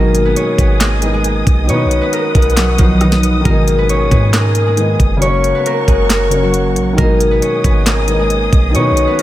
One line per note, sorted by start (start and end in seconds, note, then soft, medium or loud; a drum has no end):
0.00 0.35 G#1 loud
0.00 1.01 B2 medium
0.00 0.98 D#3 medium
0.00 1.00 G#3 medium
0.00 0.31 A#3 medium
0.00 0.37 C#4 medium
0.00 1.03 D#4 medium
0.00 1.81 F#4 medium
0.00 1.10 G#4 medium
0.00 1.67 G#4 medium
0.00 0.31 A#4 loud
0.00 5.18 D#5 medium
0.00 1.67 G#5 medium
0.00 5.18 D#6 medium
0.15 closed hi-hat medium
0.25 0.59 B3 medium
0.25 0.58 B4 medium
0.36 1.70 C#4 medium
0.36 1.69 C#5 medium
0.36 closed hi-hat medium
0.58 1.43 G#1 loud
0.58 0.86 B3 medium
0.58 0.86 B4 medium
0.58 kick medium
0.58 closed hi-hat medium
0.80 2.07 A#3 medium
0.80 2.07 A#4 medium
0.80 snare loud
0.80 clap loud
0.80 closed hi-hat medium
1.00 1.62 D#3 soft
1.00 1.68 G#3 soft
1.00 1.69 B3 soft
1.00 closed hi-hat medium
1.05 1.70 D#4 medium
1.13 1.74 G#3 medium
1.13 2.35 G#4 medium
1.24 closed hi-hat medium
1.47 1.70 B1 loud
1.47 kick loud
1.47 closed hi-hat medium
1.64 2.74 D#3 medium
1.64 2.76 F#3 medium
1.69 1.87 B2 loud
1.69 2.78 B3 medium
1.69 3.90 C#4 medium
1.69 3.43 B4 medium
1.69 3.61 C#5 loud
1.69 3.44 F#5 medium
1.69 closed hi-hat medium
1.74 2.79 D#4 medium
1.85 2.01 B1 loud
1.91 closed hi-hat medium
2.01 2.19 B3 medium
2.01 2.19 B4 medium
2.13 3.46 A#3 medium
2.13 3.45 A#4 medium
2.13 closed hi-hat medium
2.35 2.77 B1 loud
2.35 3.06 G#3 medium
2.35 4.63 G#4 medium
2.35 kick medium
2.35 closed hi-hat medium
2.42 closed hi-hat medium
2.50 closed hi-hat soft
2.57 3.06 F#3 medium
2.57 2.85 F#4 medium
2.57 snare loud
2.57 clap loud
2.57 closed hi-hat medium
2.77 3.43 B1 loud
2.77 3.39 D#3 medium
2.77 3.06 F3 medium
2.77 3.45 F#3 soft
2.77 3.46 B3 soft
2.77 5.31 F4 medium
2.77 kick loud
2.77 closed hi-hat medium
2.82 3.47 D#4 medium
3.01 3.50 D#3 medium
3.01 5.71 D#4 medium
3.01 cross-stick medium
3.01 closed hi-hat medium
3.12 snare medium
3.23 closed hi-hat medium
3.41 4.73 D#3 medium
3.41 4.74 G#3 medium
3.45 4.09 G#1 loud
3.45 4.76 B2 medium
3.45 3.84 A#3 medium
3.45 5.20 G#4 medium
3.45 3.84 A#4 loud
3.45 5.20 G#5 medium
3.45 kick loud
3.45 closed hi-hat medium
3.50 4.78 D#4 medium
3.68 closed hi-hat medium
3.78 4.12 B3 medium
3.78 4.11 B4 medium
3.89 5.22 C#4 medium
3.89 5.21 C#5 medium
3.89 closed hi-hat medium
4.11 4.96 G#2 loud
4.11 4.40 B3 medium
4.11 4.40 B4 medium
4.11 kick medium
4.11 closed hi-hat medium
4.33 5.61 A#3 medium
4.33 5.61 A#4 medium
4.33 snare loud
4.33 clap loud
4.33 closed hi-hat medium
4.55 closed hi-hat medium
4.67 5.27 G#3 medium
4.67 5.88 G#4 medium
4.75 5.21 D#3 medium
4.75 5.21 G#3 soft
4.75 5.22 B3 soft
4.75 closed hi-hat medium
4.80 5.23 D#4 medium
5.00 5.53 F#1 loud
5.00 kick loud
5.00 closed hi-hat medium
5.17 6.27 C#3 medium
5.17 6.29 F#3 medium
5.22 6.31 A#3 medium
5.22 7.43 C#4 medium
5.22 6.96 A#4 medium
5.22 7.13 C#5 loud
5.22 6.96 C#5 medium
5.22 6.96 F#5 medium
5.22 6.96 C#6 medium
5.22 closed hi-hat medium
5.27 6.32 C#4 medium
5.44 closed hi-hat medium
5.55 5.72 B3 medium
5.55 5.72 B4 medium
5.66 6.10 A#3 medium
5.66 6.09 A#4 medium
5.66 closed hi-hat medium
5.88 6.78 F#1 loud
5.88 7.03 G#3 medium
5.88 8.16 G#4 medium
5.88 kick medium
5.88 closed hi-hat medium
6.10 6.98 A#3 medium
6.10 6.97 A#4 medium
6.10 snare loud
6.10 clap loud
6.10 closed hi-hat medium
6.29 6.97 C#3 medium
6.29 6.98 F#3 soft
6.29 6.99 A#3 soft
6.29 closed hi-hat medium
6.34 6.99 C#4 medium
6.43 7.03 F#3 medium
6.43 8.87 F#4 medium
6.54 closed hi-hat medium
6.76 6.97 A#1 loud
6.76 closed hi-hat medium
6.93 8.04 D#3 medium
6.93 8.05 G#3 medium
6.98 7.41 G#1 loud
6.98 8.07 B2 medium
6.98 7.37 A#3 medium
6.98 9.22 G#4 medium
6.98 7.37 A#4 loud
6.98 9.22 D#5 medium
6.98 8.73 G#5 medium
6.98 9.22 D#6 medium
6.98 kick loud
6.98 closed hi-hat medium
7.03 8.09 D#4 medium
7.21 closed hi-hat medium
7.31 7.65 B3 medium
7.31 7.64 B4 medium
7.42 8.76 C#4 medium
7.42 8.75 C#5 medium
7.42 closed hi-hat medium
7.64 8.49 G#1 loud
7.64 7.92 B3 medium
7.64 7.92 B4 medium
7.64 kick medium
7.64 closed hi-hat medium
7.86 9.13 A#3 medium
7.86 9.13 A#4 medium
7.86 snare loud
7.86 clap loud
7.86 closed hi-hat medium
8.06 8.68 D#3 medium
8.06 8.74 G#3 soft
8.06 8.75 B3 soft
8.06 closed hi-hat medium
8.11 8.76 D#4 medium
8.19 8.80 G#3 medium
8.19 9.22 G#4 medium
8.30 closed hi-hat medium
8.53 8.76 B1 loud
8.53 kick loud
8.53 closed hi-hat medium
8.70 9.22 D#3 medium
8.70 9.22 F#3 medium
8.75 8.93 B2 loud
8.75 9.22 B3 medium
8.75 9.22 C#4 medium
8.75 9.22 C#5 medium
8.75 9.22 F#5 medium
8.75 closed hi-hat medium
8.80 9.22 D#4 medium
8.91 9.07 B1 loud
8.97 closed hi-hat medium
9.07 9.22 B3 medium
9.07 9.22 B4 medium
9.19 9.22 A#4 medium
9.19 closed hi-hat medium